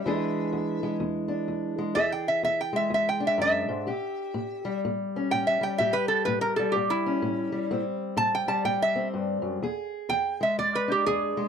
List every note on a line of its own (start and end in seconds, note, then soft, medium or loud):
0.00 0.96 E5 medium
0.06 0.49 E2 medium
0.06 3.23 E3 medium
0.06 0.83 G#3 medium
0.06 1.27 D4 medium
0.06 1.95 G#4 medium
0.53 0.96 E2 medium
0.83 1.77 G#3 soft
1.00 1.44 E2 medium
1.28 1.93 D4 soft
1.48 1.92 E2 medium
1.78 1.94 G#3 medium
1.95 2.40 E2 medium
1.95 3.85 G#4 medium
1.95 2.11 E5 medium
2.12 2.27 G5 medium
2.28 2.43 E5 medium
2.43 2.87 E2 medium
2.43 2.59 E5 medium
2.61 2.75 G5 medium
2.73 3.85 G#3 soft
2.73 2.91 E5 medium
2.90 3.35 E2 medium
2.94 3.08 E5 medium
3.09 3.23 G5 medium
3.20 3.85 D4 medium
3.27 3.40 E5 medium
3.38 3.68 F#2 medium
3.38 4.80 E5 medium
3.69 3.87 G#2 medium
3.87 4.31 A2 medium
3.87 5.80 G4 medium
4.34 4.79 A2 medium
4.65 5.60 G3 medium
4.85 5.28 A2 medium
5.16 5.79 C#4 medium
5.31 5.76 A2 medium
5.31 5.47 G5 medium
5.47 5.62 E5 medium
5.61 6.59 G3 medium
5.61 5.79 G5 medium
5.78 6.24 A2 medium
5.78 7.69 G4 medium
5.78 5.94 E5 medium
5.93 6.08 B4 medium
6.08 6.25 A4 medium
6.25 6.71 A2 medium
6.25 6.41 B4 medium
6.41 6.56 A#4 medium
6.56 7.51 G3 medium
6.56 6.73 A4 medium
6.72 7.20 A2 medium
6.72 6.89 G4 medium
6.90 7.84 E4 medium
7.06 7.70 C#4 medium
7.22 7.67 A2 medium
7.52 8.47 G3 medium
7.71 8.15 A2 medium
7.71 8.94 C4 medium
8.17 8.62 A2 medium
8.17 8.34 A5 medium
8.35 8.50 G5 medium
8.48 9.63 G3 medium
8.48 8.65 A5 medium
8.65 9.10 A2 medium
8.65 8.81 G5 medium
8.82 9.08 E5 medium
8.96 9.60 C4 medium
9.14 9.42 G2 medium
9.42 9.62 F#2 medium
9.62 10.07 E2 medium
9.62 11.48 G#4 medium
10.09 10.54 E2 medium
10.09 10.41 G5 medium
10.41 11.36 G#3 medium
10.41 10.58 E5 medium
10.58 11.03 E2 medium
10.58 10.74 D5 medium
10.75 10.91 B4 medium
10.88 11.48 D4 medium
10.88 11.06 G4 medium
11.06 11.48 E2 medium
11.06 11.48 G#4 medium
11.37 11.48 G#3 medium